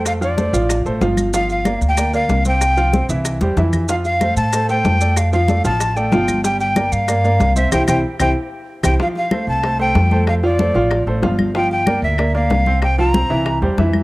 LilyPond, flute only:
\new Staff \with { instrumentName = "Flute" } { \time 4/4 \key f \major \tempo 4 = 188 f''8 d''2 r4. | f''8 f''8~ \tuplet 3/2 { f''8. r16 g''8~ } g''8 f''4 g''8~ | g''4. r2 r8 | f''8 f''4 a''4 g''4. |
f''8 f''4 a''4 g''4. | g''8 g''4 f''2 e''8 | g''8 g''8 r8 g''8 r4. g''8 | f''8 f''4 a''4 g''4. |
f''8 d''2 r4. | g''8 g''4 e''4 f''4. | g''8 bes''2 r4. | }